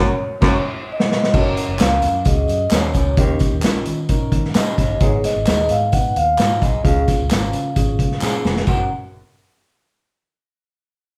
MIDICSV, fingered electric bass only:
0, 0, Header, 1, 2, 480
1, 0, Start_track
1, 0, Key_signature, 6, "major"
1, 0, Tempo, 458365
1, 1404, Time_signature, 4, 2, 24, 8
1, 11707, End_track
2, 0, Start_track
2, 0, Title_t, "Fingered electric bass"
2, 0, Program_c, 0, 33
2, 0, Note_on_c, 0, 30, 108
2, 127, Note_off_c, 0, 30, 0
2, 441, Note_on_c, 0, 30, 118
2, 605, Note_off_c, 0, 30, 0
2, 1405, Note_on_c, 0, 30, 102
2, 1613, Note_off_c, 0, 30, 0
2, 1765, Note_on_c, 0, 30, 88
2, 1869, Note_off_c, 0, 30, 0
2, 1887, Note_on_c, 0, 37, 80
2, 2121, Note_on_c, 0, 42, 99
2, 2137, Note_off_c, 0, 37, 0
2, 2331, Note_off_c, 0, 42, 0
2, 2364, Note_on_c, 0, 37, 100
2, 2573, Note_off_c, 0, 37, 0
2, 2598, Note_on_c, 0, 42, 98
2, 2809, Note_off_c, 0, 42, 0
2, 2841, Note_on_c, 0, 39, 84
2, 3051, Note_off_c, 0, 39, 0
2, 3088, Note_on_c, 0, 37, 92
2, 3295, Note_off_c, 0, 37, 0
2, 3325, Note_on_c, 0, 39, 105
2, 3533, Note_off_c, 0, 39, 0
2, 3688, Note_on_c, 0, 39, 98
2, 3791, Note_off_c, 0, 39, 0
2, 3808, Note_on_c, 0, 34, 82
2, 4015, Note_off_c, 0, 34, 0
2, 4048, Note_on_c, 0, 51, 95
2, 4255, Note_off_c, 0, 51, 0
2, 4287, Note_on_c, 0, 34, 89
2, 4495, Note_off_c, 0, 34, 0
2, 4522, Note_on_c, 0, 51, 97
2, 4732, Note_off_c, 0, 51, 0
2, 4767, Note_on_c, 0, 46, 91
2, 4975, Note_off_c, 0, 46, 0
2, 5010, Note_on_c, 0, 31, 89
2, 5216, Note_off_c, 0, 31, 0
2, 5246, Note_on_c, 0, 32, 122
2, 5454, Note_off_c, 0, 32, 0
2, 5613, Note_on_c, 0, 32, 94
2, 5714, Note_off_c, 0, 32, 0
2, 5731, Note_on_c, 0, 39, 84
2, 5936, Note_off_c, 0, 39, 0
2, 5966, Note_on_c, 0, 44, 98
2, 6381, Note_off_c, 0, 44, 0
2, 6453, Note_on_c, 0, 39, 88
2, 6658, Note_off_c, 0, 39, 0
2, 6690, Note_on_c, 0, 44, 85
2, 6896, Note_off_c, 0, 44, 0
2, 6933, Note_on_c, 0, 35, 88
2, 7137, Note_off_c, 0, 35, 0
2, 7170, Note_on_c, 0, 37, 103
2, 7375, Note_off_c, 0, 37, 0
2, 7532, Note_on_c, 0, 37, 90
2, 7633, Note_off_c, 0, 37, 0
2, 7654, Note_on_c, 0, 32, 75
2, 7858, Note_off_c, 0, 32, 0
2, 7887, Note_on_c, 0, 49, 95
2, 8094, Note_off_c, 0, 49, 0
2, 8129, Note_on_c, 0, 32, 98
2, 8335, Note_off_c, 0, 32, 0
2, 8367, Note_on_c, 0, 49, 94
2, 8574, Note_off_c, 0, 49, 0
2, 8609, Note_on_c, 0, 46, 94
2, 8815, Note_off_c, 0, 46, 0
2, 8843, Note_on_c, 0, 29, 89
2, 9051, Note_off_c, 0, 29, 0
2, 9082, Note_on_c, 0, 30, 89
2, 9306, Note_off_c, 0, 30, 0
2, 11707, End_track
0, 0, End_of_file